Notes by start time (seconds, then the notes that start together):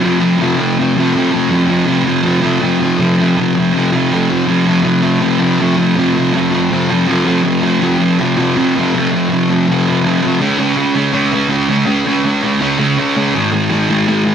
0.01 F2 C3 F3
0.19 C3 F3
0.38 F2 C3
0.42 F3
0.57 C3 F3
0.77 F2 C3 F3
0.95 F2 C3 F3
1.14 F2 C3 F3
1.31 C3 F3
1.49 F2 C3 F3
1.67 C3 F3
1.85 F2 C3 F3
2.03 F3
2.08 C3
2.23 F2 C3 F3
2.41 F2 C3 F3
2.60 F2 C3 F3
2.80 F3
2.84 C3
2.98 F2 C3 F3
3.18 C3 F3
3.37 F2 C3 F3
3.55 C3 F3
3.73 F2 C3 F3
3.92 F2 C3 F3
4.10 F2 C3 F3
4.30 C3 F3
4.47 F2 C3 F3
4.65 C3 F3
4.83 F2 C3 F3
5.02 C3 F3
5.20 F2 C3 F3
5.39 F2 C3 F3
5.59 F2 C3 F3
5.77 C3 F3
5.95 F2 C3 F3
6.14 C3 F3
6.33 F2 C3
6.37 F3
6.51 C3 F3
6.70 F2 C3 F3
6.89 F2 C3 F3
7.07 F2 C3 F3
7.25 C3 F3
7.43 F2 C3 F3
7.62 C3 F3
7.80 F2 C3 F3
7.99 C3 F3
8.19 F2 C3 F3
8.37 F2 C3 F3
8.56 F2 C3 F3
8.76 C3 F3
8.95 F2 C3 F3
9.12 C3 F3
9.30 F2 C3
9.34 F3
9.50 F3
9.54 C3
9.67 F2 C3 F3
9.87 F2 C3 F3
10.04 F2 C3 F3
10.22 F3
10.27 C3
10.40 C#3 G#3 C#4
10.59 C#3 G#3 C#4
10.77 C#3 G#3 C#4
10.95 C#3 G#3 C#4
11.13 C#3 G#3 C#4
11.32 C#3 G#3 C#4
11.49 C#3 G#3 C#4
11.69 C#3 G#3 C#4
11.86 C#3 G#3 C#4
12.06 C#3 G#3 C#4
12.24 C#3 G#3 C#4
12.43 C#3 G#3 C#4
12.61 C#3 G#3 C#4
12.79 C#3 G#3 C#4
12.98 C#3 G#3 C#4
13.16 C#3 G#3 C#4
13.35 G#2 D#3 G#3
13.52 G#2 D#3 G#3
13.70 G#2 D#3 G#3
13.89 G#2 D#3 G#3
14.08 G#2 D#3 G#3
14.25 G#2 D#3 G#3